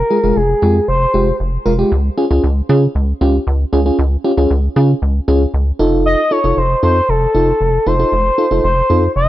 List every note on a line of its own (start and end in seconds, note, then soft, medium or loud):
0.00 0.38 A#4 loud
0.10 0.18 G#3 medium
0.10 0.18 F4 medium
0.10 0.18 G#4 medium
0.24 0.33 F1 loud
0.24 0.38 G#3 medium
0.24 0.38 F4 medium
0.24 0.38 G#4 medium
0.36 0.55 F1 loud
0.36 0.88 G#4 medium
0.62 0.80 F2 loud
0.62 0.77 G#3 medium
0.62 0.77 F4 medium
0.62 0.77 G4 medium
0.88 1.06 F1 loud
0.88 1.36 C5 medium
1.14 1.32 F1 loud
1.14 1.29 G#3 medium
1.14 1.29 F4 medium
1.14 1.29 G4 medium
1.40 1.58 F1 loud
1.66 1.84 F1 loud
1.66 1.73 G#3 medium
1.66 1.73 F4 medium
1.66 1.73 A#4 loud
1.79 1.92 G#3 medium
1.79 1.92 F4 medium
1.79 1.92 G4 medium
1.92 2.10 C#2 loud
2.18 2.25 C#4 medium
2.18 2.25 F4 medium
2.18 2.25 G#4 loud
2.31 2.40 C#2 loud
2.31 2.45 C#4 medium
2.31 2.45 F4 medium
2.31 2.45 G#4 medium
2.44 2.62 C#2 loud
2.69 2.87 C#3 loud
2.69 2.84 C#4 medium
2.69 2.84 F4 medium
2.69 2.84 G#4 loud
2.95 3.13 C#2 loud
3.21 3.39 C#2 loud
3.21 3.36 C#4 medium
3.21 3.36 F4 medium
3.21 3.36 G4 loud
3.47 3.65 C#2 loud
3.73 3.91 C#2 loud
3.73 3.80 C#4 medium
3.73 3.80 F4 medium
3.73 3.80 G#4 loud
3.86 4.01 C#4 medium
3.86 4.01 F4 medium
3.86 4.01 G#4 medium
3.99 4.17 C#2 loud
4.24 4.32 C#4 medium
4.24 4.32 F4 medium
4.24 4.32 G4 loud
4.37 4.46 C#2 loud
4.37 4.52 C#4 medium
4.37 4.52 F4 medium
4.37 4.52 G#4 medium
4.50 4.69 C#2 loud
4.76 4.94 C#3 loud
4.76 4.91 C#4 medium
4.76 4.91 F4 medium
4.76 4.91 G#4 medium
5.02 5.20 C#2 loud
5.28 5.46 C#2 loud
5.28 5.43 C#4 medium
5.28 5.43 F4 medium
5.28 5.43 G#4 loud
5.54 5.72 C#2 loud
5.79 6.16 F1 loud
5.79 6.21 D#4 loud
5.79 6.21 F4 medium
5.79 6.21 A4 loud
6.06 6.33 D#5 loud
6.31 6.39 D#4 medium
6.31 6.39 F4 medium
6.31 6.39 A4 medium
6.31 6.59 C#5 loud
6.44 6.53 F1 loud
6.44 6.59 D#4 medium
6.44 6.59 F4 medium
6.44 6.59 A4 medium
6.57 6.75 F1 loud
6.57 6.83 C5 loud
6.83 7.01 F2 loud
6.83 6.98 D#4 medium
6.83 6.98 F4 medium
6.83 6.98 A4 medium
6.83 7.11 C5 loud
7.09 7.27 F1 loud
7.09 7.88 A4 loud
7.35 7.53 F1 loud
7.35 7.50 D#4 medium
7.35 7.50 F4 medium
7.35 7.50 A4 medium
7.61 7.79 F1 loud
7.86 8.05 F1 loud
7.86 7.94 D#4 medium
7.86 7.94 F4 medium
7.86 7.94 A4 medium
7.86 8.64 C5 loud
7.99 8.14 D#4 medium
7.99 8.14 F4 medium
7.99 8.14 A4 medium
8.12 8.30 F1 loud
8.38 8.46 D#4 medium
8.38 8.46 F4 medium
8.38 8.46 A4 medium
8.51 8.60 F1 loud
8.51 8.66 D#4 medium
8.51 8.66 F4 medium
8.51 8.66 A4 medium
8.64 8.82 F1 loud
8.64 9.12 C5 medium
8.90 9.08 F2 loud
8.90 9.05 D#4 medium
8.90 9.05 F4 medium
8.90 9.05 A4 medium
9.16 9.29 F1 loud
9.16 9.29 D#5 loud